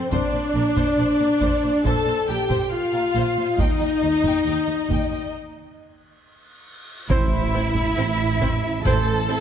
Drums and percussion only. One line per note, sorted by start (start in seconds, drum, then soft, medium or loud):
0.12 taiko medium
0.77 taiko medium
1.41 taiko medium
1.85 taiko medium
2.50 taiko medium
3.59 taiko medium
4.24 taiko medium
4.90 taiko medium
7.10 taiko medium
7.76 taiko medium
8.42 taiko medium
8.86 taiko medium